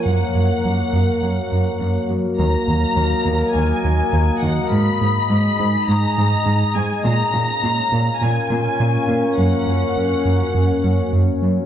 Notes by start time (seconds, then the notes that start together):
Already playing: A#3 A#4 C#5
0.06 F#2 F#3 F#5
0.35 F#2
0.64 F#2
0.93 F#2
1.23 F#2
1.51 F#2
1.81 F#2
2.09 F#2 F#3
2.38 D#2 A#3 A#4 D#5 A#5
2.68 D#2
2.96 D#2
3.25 D#2
3.55 D#2 G#5
3.84 D#2
4.13 D#2
4.42 D#2 D#3 F#5
4.71 G#2 G#3 D#4 G#4 B5
5.01 G#2
5.30 G#2
5.59 G#2
5.88 G#2 A#5
6.18 G#2
6.46 G#2
6.75 G#2 G#3 G#5
7.05 A#2 A#3 C#4 F4 A#4 A#5
7.34 A#2
7.63 A#2
7.92 A#2
8.21 A#2 G#5
8.50 A#2
8.80 A#2
9.08 A#2 A#3
9.38 F#2 F#4 F#5
9.67 F#2
9.96 F#2
10.25 F#2
10.55 F#2
10.84 F#2
11.13 F#2
11.42 F#2 F#3